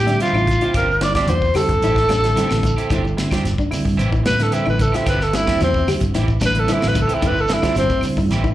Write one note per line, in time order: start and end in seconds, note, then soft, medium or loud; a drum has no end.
0.00 0.15 A2 medium
0.00 0.20 G4 loud
0.06 0.53 D3 medium
0.06 0.53 G3 medium
0.06 0.53 C4 medium
0.06 0.21 D4 medium
0.06 0.53 E5 medium
0.06 snare soft
0.06 closed hi-hat soft
0.11 shekere soft
0.20 0.35 E3 medium
0.20 0.35 C4 medium
0.20 0.35 E4 medium
0.20 0.74 F4 loud
0.20 0.35 G4 medium
0.20 closed hi-hat medium
0.20 high conga medium
0.24 shekere medium
0.33 0.56 A1 medium
0.33 0.49 E4 medium
0.33 muted clean electric guitar stroke soft
0.33 claves medium
0.38 shekere soft
0.47 muted clean electric guitar stroke soft
0.47 kick medium
0.47 closed hi-hat soft
0.47 high conga medium
0.47 low conga medium
0.47 shekere medium
0.61 0.74 C4 soft
0.61 0.74 E4 soft
0.61 0.76 F4 medium
0.61 0.74 G4 soft
0.61 closed hi-hat medium
0.61 shekere soft
0.74 1.20 G1 medium
0.74 0.88 F3 medium
0.74 0.89 C4 medium
0.74 0.89 D4 medium
0.74 0.88 G4 medium
0.74 1.04 A#4 medium
0.74 kick medium
0.74 closed hi-hat medium
0.74 claves medium
0.74 shekere medium
0.89 muted clean electric guitar stroke soft
0.89 shekere soft
1.01 1.28 D3 medium
1.01 1.28 G3 medium
1.01 1.28 C4 medium
1.01 1.15 E4 medium
1.01 1.28 E4 medium
1.01 1.15 D5 loud
1.01 muted clean electric guitar stroke soft
1.01 snare medium
1.01 closed hi-hat soft
1.01 high conga medium
1.01 shekere medium
1.15 1.29 C4 soft
1.15 1.29 D4 soft
1.15 1.29 G4 medium
1.15 1.30 D5 medium
1.15 kick medium
1.15 snare medium
1.15 closed hi-hat soft
1.15 claves medium
1.15 shekere soft
1.27 1.50 E2 medium
1.27 1.43 F4 medium
1.27 1.57 C5 medium
1.27 muted clean electric guitar stroke soft
1.27 closed hi-hat medium
1.27 high conga medium
1.27 shekere medium
1.42 kick medium
1.42 shekere soft
1.54 1.82 D3 medium
1.54 1.82 G3 medium
1.54 1.82 C4 medium
1.54 1.82 E4 medium
1.54 1.69 G4 medium
1.54 3.13 A4 loud
1.54 snare soft
1.54 open hi-hat medium
1.54 low conga medium
1.54 claves medium
1.54 shekere medium
1.68 1.80 G1 medium
1.68 muted clean electric guitar stroke soft
1.68 kick medium
1.68 closed hi-hat medium
1.68 shekere soft
1.82 2.05 A1 loud
1.82 1.96 E3 medium
1.82 1.97 C4 medium
1.82 1.96 E4 medium
1.82 1.97 E4 medium
1.82 1.96 G4 medium
1.82 closed hi-hat medium
1.82 shekere medium
1.96 muted clean electric guitar stroke soft
1.96 kick medium
1.96 snare soft
1.96 shekere soft
2.09 2.32 A1 medium
2.09 2.17 C4 medium
2.09 2.24 D4 medium
2.09 2.16 E4 medium
2.09 muted clean electric guitar stroke soft
2.09 snare medium
2.09 closed hi-hat soft
2.09 high conga medium
2.09 claves medium
2.09 shekere medium
2.24 2.69 D3 medium
2.24 2.69 G3 medium
2.24 2.69 C4 medium
2.24 2.70 E4 medium
2.24 snare soft
2.24 closed hi-hat medium
2.24 shekere soft
2.36 2.50 E3 medium
2.36 2.49 C4 medium
2.36 2.48 E4 medium
2.36 2.48 G4 medium
2.36 muted nylon-string guitar stroke medium
2.36 snare soft
2.36 closed hi-hat medium
2.36 high conga medium
2.36 shekere medium
2.49 2.73 A1 medium
2.49 muted clean electric guitar stroke medium
2.49 snare medium
2.49 claves medium
2.49 shekere soft
2.63 2.77 E4 medium
2.63 muted clean electric guitar stroke soft
2.63 kick medium
2.63 closed hi-hat medium
2.63 high conga medium
2.63 low conga medium
2.63 shekere medium
2.77 2.89 C4 soft
2.77 2.90 E4 medium
2.77 2.89 G4 medium
2.77 closed hi-hat medium
2.77 shekere soft
2.90 3.13 G1 medium
2.90 3.04 F3 medium
2.90 3.03 C4 medium
2.90 3.02 D4 medium
2.90 3.05 E4 medium
2.90 3.04 G4 medium
2.90 kick loud
2.90 closed hi-hat medium
2.90 claves medium
2.90 shekere medium
3.04 muted clean electric guitar stroke soft
3.04 high conga medium
3.04 shekere soft
3.17 3.44 D3 medium
3.17 3.44 G3 medium
3.17 3.44 C4 medium
3.17 3.43 E4 medium
3.17 muted clean electric guitar stroke soft
3.17 snare medium
3.17 closed hi-hat medium
3.17 high conga medium
3.17 low conga medium
3.17 shekere medium
3.31 3.45 C4 soft
3.31 3.44 D4 medium
3.31 3.46 F4 medium
3.31 3.44 G4 medium
3.31 kick medium
3.31 snare medium
3.31 closed hi-hat soft
3.31 high conga medium
3.31 claves medium
3.31 shekere soft
3.43 3.55 G1 medium
3.43 muted clean electric guitar stroke soft
3.43 snare soft
3.43 closed hi-hat medium
3.43 high conga medium
3.43 shekere medium
3.58 3.72 D4 medium
3.58 kick medium
3.58 shekere soft
3.71 3.98 D3 medium
3.71 3.98 G3 medium
3.71 3.98 C4 medium
3.71 3.97 E4 medium
3.71 muted fingered electric bass stroke soft
3.71 open hi-hat medium
3.71 low conga medium
3.71 claves medium
3.71 shekere medium
3.85 3.96 G2 medium
3.85 muted clean electric guitar stroke soft
3.85 kick medium
3.85 shekere soft
3.97 4.21 A1 medium
3.97 4.12 E3 medium
3.97 4.10 C4 medium
3.97 4.10 E4 medium
3.97 4.10 G4 medium
3.97 closed hi-hat medium
3.97 shekere medium
4.11 4.26 E4 medium
4.11 muted clean electric guitar stroke soft
4.11 kick medium
4.11 shekere soft
4.23 4.48 A2 medium
4.23 4.32 C4 medium
4.23 4.32 E4 medium
4.23 4.44 B4 loud
4.23 muted clean electric guitar stroke soft
4.23 snare medium
4.23 closed hi-hat soft
4.23 high conga medium
4.23 low conga medium
4.23 claves medium
4.27 shekere medium
4.39 4.85 D3 medium
4.39 4.85 G3 medium
4.39 4.84 C4 medium
4.39 4.53 D4 medium
4.39 4.85 E4 medium
4.39 4.55 A4 medium
4.39 snare soft
4.39 closed hi-hat soft
4.39 shekere soft
4.52 4.66 E3 medium
4.52 4.66 C4 medium
4.52 4.65 E4 medium
4.52 4.66 E4 medium
4.52 4.65 G4 medium
4.52 closed hi-hat medium
4.52 high conga medium
4.52 shekere medium
4.66 4.89 A1 medium
4.66 4.80 E4 medium
4.66 4.83 B4 medium
4.66 muted clean electric guitar stroke soft
4.66 claves medium
4.66 shekere soft
4.78 4.97 A4 medium
4.78 muted clean electric guitar stroke soft
4.78 kick medium
4.78 closed hi-hat medium
4.78 low conga medium
4.78 shekere medium
4.92 5.04 C4 soft
4.92 5.06 E4 soft
4.92 5.07 E4 medium
4.92 5.08 F4 medium
4.92 5.05 G4 medium
4.92 snare soft
4.92 closed hi-hat medium
4.92 shekere soft
5.05 5.51 G1 medium
5.05 5.20 F3 medium
5.05 5.19 C4 medium
5.05 5.20 D4 medium
5.05 5.20 G4 medium
5.05 5.24 B4 medium
5.05 kick loud
5.05 snare soft
5.05 closed hi-hat medium
5.05 claves medium
5.05 shekere medium
5.21 5.37 A4 medium
5.21 muted clean electric guitar stroke soft
5.21 snare soft
5.21 shekere soft
5.33 5.60 D3 medium
5.33 5.60 G3 medium
5.33 5.60 C4 medium
5.33 5.60 E4 medium
5.33 5.61 E4 loud
5.33 muted clean electric guitar stroke soft
5.33 muted nylon-string guitar stroke medium
5.33 snare medium
5.33 closed hi-hat soft
5.33 high conga loud
5.33 shekere medium
5.47 5.60 C4 soft
5.47 5.60 D4 soft
5.47 5.60 G4 medium
5.47 kick medium
5.47 snare medium
5.47 closed hi-hat soft
5.47 high conga medium
5.47 claves medium
5.47 shekere soft
5.60 5.83 E2 medium
5.60 5.88 C4 loud
5.60 5.75 F4 medium
5.60 muted clean electric guitar stroke soft
5.60 snare soft
5.60 closed hi-hat medium
5.60 high conga medium
5.60 shekere medium
5.74 kick medium
5.74 shekere soft
5.87 6.13 D3 medium
5.87 6.14 G3 medium
5.87 6.13 C4 medium
5.87 6.14 E4 medium
5.87 6.01 G4 medium
5.87 snare soft
5.87 open hi-hat medium
5.87 low conga medium
5.87 claves medium
5.87 shekere medium
6.00 6.12 G1 medium
6.00 muted clean electric guitar stroke soft
6.00 kick medium
6.00 closed hi-hat medium
6.00 high conga medium
6.00 shekere soft
6.14 6.37 A1 medium
6.14 6.28 E3 medium
6.14 6.27 C4 medium
6.14 6.27 E4 medium
6.14 6.28 E4 medium
6.14 6.26 G4 medium
6.14 snare soft
6.14 closed hi-hat medium
6.14 shekere medium
6.28 muted clean electric guitar stroke soft
6.28 kick medium
6.28 shekere soft
6.40 6.64 A1 medium
6.40 6.47 C4 medium
6.40 6.55 D4 medium
6.40 6.48 E4 medium
6.40 muted clean electric guitar stroke soft
6.40 snare medium
6.40 closed hi-hat soft
6.40 high conga medium
6.40 low conga medium
6.40 claves medium
6.40 shekere medium
6.46 6.61 B4 loud
6.54 7.00 D3 medium
6.54 7.00 G3 medium
6.54 7.00 C4 medium
6.54 7.00 E4 medium
6.54 closed hi-hat medium
6.54 shekere soft
6.59 6.74 A4 loud
6.67 6.81 E3 medium
6.67 6.80 C4 medium
6.67 6.79 E4 medium
6.67 6.82 E4 medium
6.67 6.79 G4 medium
6.67 snare soft
6.67 closed hi-hat medium
6.67 high conga medium
6.67 shekere medium
6.73 6.89 E4 loud
6.80 7.06 A1 medium
6.80 muted clean electric guitar stroke soft
6.80 snare medium
6.80 claves medium
6.80 shekere soft
6.88 6.97 B4 medium
6.93 7.09 E4 medium
6.93 muted clean electric guitar stroke soft
6.93 kick medium
6.93 closed hi-hat medium
6.93 high conga medium
6.93 low conga medium
6.93 shekere medium
7.02 7.16 A4 medium
7.07 7.20 C4 soft
7.07 7.21 E4 medium
7.07 7.21 G4 medium
7.07 closed hi-hat medium
7.07 shekere soft
7.14 7.29 E4 medium
7.20 7.45 G1 medium
7.20 7.35 F3 medium
7.20 7.35 C4 medium
7.20 7.34 D4 medium
7.20 7.36 E4 medium
7.20 7.34 G4 medium
7.20 kick loud
7.20 closed hi-hat medium
7.20 claves medium
7.20 shekere medium
7.27 7.42 B4 loud
7.35 muted clean electric guitar stroke soft
7.35 shekere soft
7.40 7.55 A4 medium
7.48 7.75 D3 medium
7.48 7.75 G3 medium
7.48 7.75 C4 medium
7.48 7.75 E4 medium
7.48 muted clean electric guitar stroke soft
7.48 snare medium
7.48 closed hi-hat soft
7.48 high conga medium
7.48 low conga medium
7.48 shekere medium
7.53 7.77 E4 loud
7.62 7.75 C4 soft
7.62 7.76 D4 soft
7.62 7.76 F4 medium
7.62 7.75 G4 medium
7.62 kick medium
7.62 snare medium
7.62 closed hi-hat medium
7.62 claves medium
7.62 shekere soft
7.75 7.87 G1 loud
7.75 8.03 C4 loud
7.75 muted clean electric guitar stroke soft
7.75 snare soft
7.75 closed hi-hat medium
7.75 high conga medium
7.75 shekere medium
7.90 muted nylon-string guitar stroke medium
7.90 kick medium
7.90 shekere soft
8.01 8.28 D3 medium
8.01 8.28 G3 medium
8.01 8.29 C4 medium
8.01 8.29 E4 medium
8.01 muted fingered electric bass stroke soft
8.01 open hi-hat medium
8.01 low conga medium
8.01 claves medium
8.01 shekere medium
8.17 8.28 G2 medium
8.17 8.31 E4 medium
8.17 muted clean electric guitar stroke soft
8.17 kick medium
8.17 shekere soft
8.30 8.53 A1 loud
8.30 8.44 E3 medium
8.30 8.43 C4 medium
8.30 8.43 E4 medium
8.30 8.43 G4 loud
8.30 snare soft
8.30 closed hi-hat medium
8.30 shekere medium
8.44 8.54 E4 medium
8.44 muted clean electric guitar stroke soft
8.44 kick medium
8.44 shekere soft